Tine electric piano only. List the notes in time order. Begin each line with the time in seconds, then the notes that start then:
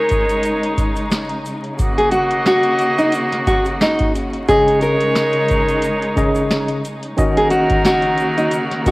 4.49 C#3 C#4 G#4 D#5
6.16 C#3 C#4 G#4 D#5
7.17 D#3 C#4 F#4 D#5
8.86 D#3 C#4 F#4 D#5